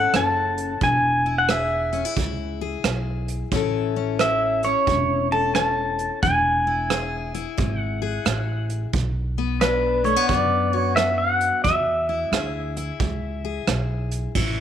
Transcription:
Already playing: steel-string acoustic guitar C#4 E4 A4, pedal steel guitar F#5
0.14 upright bass F#1, steel-string acoustic guitar E3, pedal steel guitar A5, cross-stick, closed hi-hat
0.57 closed hi-hat
0.81 upright bass E1, steel-string acoustic guitar E3, pedal steel guitar G#5, kick, closed hi-hat
1.26 steel-string acoustic guitar E4
1.38 pedal steel guitar F#5
1.49 steel-string acoustic guitar B3 G#4, pedal steel guitar E5, cross-stick, closed hi-hat
1.93 steel-string acoustic guitar C#4, closed hi-hat
2.05 steel-string acoustic guitar E4
2.17 upright bass C#2, steel-string acoustic guitar B2, kick, closed hi-hat
2.61 steel-string acoustic guitar G#4
2.84 upright bass B1, steel-string acoustic guitar B3, cross-stick, closed hi-hat
3.28 closed hi-hat
3.52 upright bass A1, steel-string acoustic guitar A2 E3 C#4 E4 A4, kick, closed hi-hat
3.96 steel-string acoustic guitar C#4
4.19 steel-string acoustic guitar E3 E4, pedal steel guitar E5, cross-stick, closed hi-hat
4.63 steel-string acoustic guitar C#4, pedal steel guitar C#5, closed hi-hat
4.87 upright bass E1, steel-string acoustic guitar A2, kick, closed hi-hat
5.32 steel-string acoustic guitar A4, pedal steel guitar A5
5.55 steel-string acoustic guitar E3, pedal steel guitar A5, cross-stick, closed hi-hat
5.99 closed hi-hat
6.23 upright bass E1, steel-string acoustic guitar E3, pedal steel guitar G#5, kick, closed hi-hat
6.67 steel-string acoustic guitar E4
6.90 steel-string acoustic guitar B3 G#4, cross-stick, closed hi-hat
7.34 steel-string acoustic guitar E4, closed hi-hat
7.58 upright bass G#1, steel-string acoustic guitar B2, kick, closed hi-hat
7.79 pedal steel guitar F#5
8.02 steel-string acoustic guitar G#4
8.25 upright bass A1, steel-string acoustic guitar B3, cross-stick, closed hi-hat
8.70 closed hi-hat
8.93 upright bass B1, steel-string acoustic guitar B2, kick, closed hi-hat
9.38 steel-string acoustic guitar B3
9.61 steel-string acoustic guitar F#3 D4, pedal steel guitar B4, cross-stick, closed hi-hat
10.04 steel-string acoustic guitar A3, pedal steel guitar C#5, closed hi-hat
10.16 steel-string acoustic guitar B3
10.29 upright bass F#2, steel-string acoustic guitar F#2, pedal steel guitar D5, kick, closed hi-hat
10.73 steel-string acoustic guitar F#4, pedal steel guitar C#5
10.96 steel-string acoustic guitar F#3, pedal steel guitar E5, cross-stick, closed hi-hat
11.18 pedal steel guitar F#5
11.40 closed hi-hat
11.64 upright bass E2, steel-string acoustic guitar E3, pedal steel guitar E5, kick, closed hi-hat
12.09 steel-string acoustic guitar E4
12.31 upright bass D2, steel-string acoustic guitar B3 G#4, cross-stick, closed hi-hat
12.76 steel-string acoustic guitar E4, closed hi-hat
13.00 upright bass C#2, steel-string acoustic guitar B2, kick, closed hi-hat
13.45 steel-string acoustic guitar G#4
13.67 upright bass B1, steel-string acoustic guitar B3, cross-stick, closed hi-hat
14.11 closed hi-hat
14.35 upright bass A1, steel-string acoustic guitar A2 E4, kick, crash

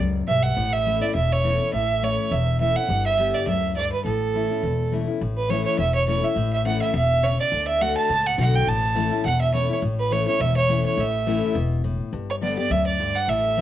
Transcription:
0.00 upright bass C#2, steel-string acoustic guitar F#2
0.28 upright bass B1, steel-string acoustic guitar G2, fiddle E5
0.43 fiddle F#5
0.57 upright bass A1, steel-string acoustic guitar A2
0.73 fiddle E5
0.85 steel-string acoustic guitar E3 A3 C#4 E4
1.01 steel-string acoustic guitar C#4 E4, fiddle D5
1.15 upright bass E1, steel-string acoustic guitar E2, fiddle E5
1.33 fiddle C#5
1.43 steel-string acoustic guitar E3 A3 C#4 E4
1.59 steel-string acoustic guitar C#4 E4
1.73 upright bass A1, steel-string acoustic guitar A2, fiddle E5
2.02 steel-string acoustic guitar E3 A3 C#4 E4, fiddle C#5
2.31 upright bass E1, steel-string acoustic guitar E2, fiddle E5
2.60 steel-string acoustic guitar E3 A3 C#4 E4, fiddle E5
2.75 steel-string acoustic guitar C#4 E4, fiddle F#5
2.89 upright bass G1, steel-string acoustic guitar G2
3.06 fiddle E5
3.18 steel-string acoustic guitar D3 G3 B3 G4
3.34 fiddle D5
3.47 upright bass D2, steel-string acoustic guitar F#2, fiddle E5
3.76 steel-string acoustic guitar G2, fiddle D5
3.92 fiddle B4
4.05 upright bass A1, steel-string acoustic guitar A2, fiddle A4
4.34 steel-string acoustic guitar E3 A3 C#4 E4
4.50 steel-string acoustic guitar C#4 E4
4.63 upright bass E1, steel-string acoustic guitar E2
4.92 steel-string acoustic guitar E3 A3 C#4 E4
5.07 steel-string acoustic guitar C#4 E4
5.21 upright bass A1, steel-string acoustic guitar A2
5.37 fiddle B4
5.49 steel-string acoustic guitar E3 A3 C#4 E4, fiddle C#5
5.65 fiddle C#5
5.79 upright bass E1, steel-string acoustic guitar E2, fiddle E5
5.95 fiddle C#5
6.07 steel-string acoustic guitar E3 A3 C#4 E4, fiddle C#5
6.22 steel-string acoustic guitar C#4 E4, fiddle E5
6.36 upright bass A1, steel-string acoustic guitar A2
6.53 fiddle E5
6.65 steel-string acoustic guitar E3 A3 C#4 E4, fiddle F#5
6.82 fiddle E5
6.94 upright bass E1, steel-string acoustic guitar B2, fiddle E5
7.23 steel-string acoustic guitar C#3, fiddle C#5
7.40 fiddle D5
7.51 upright bass D2, steel-string acoustic guitar D3
7.68 fiddle E5
7.80 steel-string acoustic guitar D3 A3 D4 F#4, fiddle F#5
7.98 fiddle A5
8.09 upright bass C#2, steel-string acoustic guitar A2
8.27 fiddle F#5
8.38 upright bass B1, steel-string acoustic guitar D3 A3 D4 F#4, fiddle F#5
8.55 fiddle G5
8.67 upright bass A1, steel-string acoustic guitar A2, fiddle A5
8.95 steel-string acoustic guitar E3 A3 C#4 E4
9.11 steel-string acoustic guitar C#4 E4
9.24 upright bass E1, steel-string acoustic guitar E2, fiddle F#5
9.42 fiddle E5
9.53 steel-string acoustic guitar E3 A3 C#4 E4, fiddle C#5
9.69 steel-string acoustic guitar C#4 E4
9.82 upright bass A1, steel-string acoustic guitar A2
10.00 fiddle B4
10.11 steel-string acoustic guitar E3 A3 C#4 E4, fiddle C#5
10.26 steel-string acoustic guitar C#4 E4, fiddle C#5
10.40 upright bass E1, steel-string acoustic guitar E2, fiddle E5
10.57 fiddle C#5
10.68 steel-string acoustic guitar E3 A3 C#4 E4
10.86 fiddle C#5
10.97 upright bass A1, steel-string acoustic guitar A2, fiddle E5
11.26 steel-string acoustic guitar E3 A3 C#4 E4
11.55 upright bass E1, steel-string acoustic guitar B2
11.84 steel-string acoustic guitar A2
12.13 upright bass G1, steel-string acoustic guitar G2
12.30 fiddle C#5
12.41 steel-string acoustic guitar D3 G3 B3 G4, fiddle D5
12.57 steel-string acoustic guitar B3 G4, fiddle D5
12.70 upright bass D2, steel-string acoustic guitar F#2, fiddle E5
12.87 fiddle D5
13.00 steel-string acoustic guitar G2
13.16 fiddle F#5
13.28 upright bass A1, steel-string acoustic guitar A2, fiddle E5
13.57 steel-string acoustic guitar E3 A3 C#4

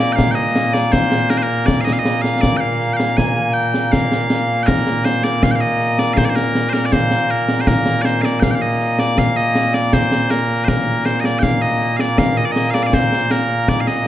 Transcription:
Already playing: bagpipes A#2 A#3 D5
0.00 snare
0.12 bagpipes F5 G5
0.18 concert bass drum, snare
0.31 bagpipes D#5 G5
0.56 snare
0.73 bagpipes D5, snare
0.92 bagpipes C5, concert bass drum, snare
1.12 snare
1.30 bagpipes A#4, snare
1.37 bagpipes C5
1.43 bagpipes A#4
1.66 bagpipes D5, concert bass drum, snare
1.81 bagpipes D#5 F5
1.87 snare
1.93 bagpipes F5
1.99 bagpipes D#5
2.05 snare
2.22 bagpipes F5, snare
2.41 bagpipes D5, concert bass drum, snare
2.57 bagpipes F5 G5
2.81 snare
2.93 bagpipes F5 G5
3.00 snare
3.17 bagpipes G#5, concert bass drum, snare
3.54 bagpipes G5
3.74 snare
3.92 bagpipes F5, concert bass drum, snare
4.12 snare
4.30 snare
4.63 bagpipes A#4 G5
4.68 concert bass drum, snare
4.87 snare
5.05 bagpipes C5, snare
5.24 bagpipes D5, snare
5.43 bagpipes F5, concert bass drum, snare
5.51 bagpipes G5
5.55 bagpipes F5
5.61 bagpipes D#5
5.80 snare
5.99 bagpipes D5, snare
6.13 bagpipes C5 F5, concert bass drum, snare
6.25 bagpipes D5
6.29 bagpipes C5
6.35 bagpipes A#4, snare
6.55 snare
6.69 bagpipes A#4 C5
6.74 snare
6.86 bagpipes D5
6.92 bagpipes C5, concert bass drum, snare
7.11 snare
7.30 bagpipes A#4
7.48 snare
7.61 bagpipes C5
7.67 bagpipes A#4, concert bass drum, snare
7.86 snare
8.02 bagpipes C5 D5, snare
8.22 bagpipes D5 F5, snare
8.40 bagpipes F5 G5, concert bass drum, snare
8.51 bagpipes G5
8.55 bagpipes F5
8.62 bagpipes D#5
8.80 snare
8.99 bagpipes D5, snare
9.18 bagpipes F5, concert bass drum, snare
9.37 bagpipes D#5
9.55 snare
9.74 bagpipes D5, snare
9.93 bagpipes C5, concert bass drum, snare
10.12 snare
10.30 bagpipes A#4, snare
10.64 bagpipes A#4 C5, concert bass drum, snare
11.05 bagpipes C5, snare
11.20 bagpipes D#5
11.24 bagpipes D5, snare
11.39 bagpipes F5 G5
11.43 concert bass drum, snare
11.62 bagpipes D#5
11.81 snare
11.97 bagpipes D5 F5, snare
12.18 bagpipes F5, concert bass drum, snare
12.37 bagpipes D#5
12.45 bagpipes D5
12.51 bagpipes D#5
12.56 snare
12.71 bagpipes D5 F5, snare
12.83 bagpipes D5 F5
12.93 bagpipes C5, concert bass drum, snare
13.13 snare
13.31 bagpipes A#4, snare
13.68 bagpipes D5, concert bass drum, snare
13.80 bagpipes F5
13.87 bagpipes D#5, snare

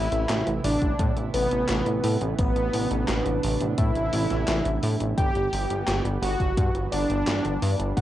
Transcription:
Already playing: analog synth pad C3 E3 A3 B3 E4, supersaw synth E4, fm electric piano E5
0.12 analog synth bass A1, closed hi-hat
0.29 analog synth bass A1, snare, clap, closed hi-hat
0.47 analog synth bass A1, closed hi-hat
0.64 analog synth bass A1, supersaw synth D4, fm electric piano D5, open hi-hat
0.82 analog synth bass A1, kick, closed hi-hat
0.99 analog synth bass A2, kick, closed hi-hat
1.17 analog synth bass A1, closed hi-hat
1.34 analog synth bass A1, supersaw synth B3, fm electric piano B4, open hi-hat
1.51 analog synth bass A1, closed hi-hat
1.69 analog synth bass A1, snare, clap, closed hi-hat
1.86 analog synth bass A1, closed hi-hat
2.04 analog synth bass A2, open hi-hat
2.21 analog synth bass A1, closed hi-hat
2.39 analog synth bass A1, supersaw synth B3, analog synth pad D4, fm electric piano B4, kick, closed hi-hat
2.56 analog synth bass A1, closed hi-hat
2.73 analog synth bass A1, open hi-hat
2.91 analog synth bass A1, closed hi-hat
3.08 analog synth bass A1, snare, clap, closed hi-hat
3.26 analog synth bass A1, closed hi-hat
3.43 analog synth bass A1, open hi-hat
3.61 analog synth bass A1, closed hi-hat
3.78 analog synth bass A2, supersaw synth E4, fm electric piano E5, kick, closed hi-hat
3.95 analog synth bass A1, closed hi-hat
4.13 analog synth bass A1, open hi-hat
4.30 analog synth bass A1, snare, closed hi-hat
4.48 analog synth bass A1, snare, clap, closed hi-hat
4.65 analog synth bass A1, closed hi-hat
4.83 analog synth bass A2, open hi-hat
5.00 analog synth bass A1, closed hi-hat
5.18 analog synth bass G1, analog synth pad E3 G3 B3, supersaw synth G4, fm electric piano G5, kick, closed hi-hat
5.35 analog synth bass G1, closed hi-hat
5.53 analog synth bass G1, open hi-hat
5.70 analog synth bass G1, closed hi-hat
5.88 analog synth bass G1, snare, clap, closed hi-hat
6.05 analog synth bass G1, closed hi-hat
6.22 analog synth bass G1, supersaw synth F#4, fm electric piano F#5, open hi-hat
6.40 analog synth bass G1, kick, closed hi-hat
6.57 analog synth bass G2, kick, closed hi-hat
6.75 analog synth bass G1, closed hi-hat
6.92 analog synth bass G1, supersaw synth D4, fm electric piano D5, open hi-hat
7.10 analog synth bass G1, closed hi-hat
7.27 analog synth bass G1, snare, clap, closed hi-hat
7.45 analog synth bass G1, closed hi-hat
7.62 analog synth bass G2, open hi-hat
7.79 analog synth bass G1, closed hi-hat
7.97 analog synth bass G1, analog synth pad A3, supersaw synth F#4, fm electric piano F#5, kick, closed hi-hat

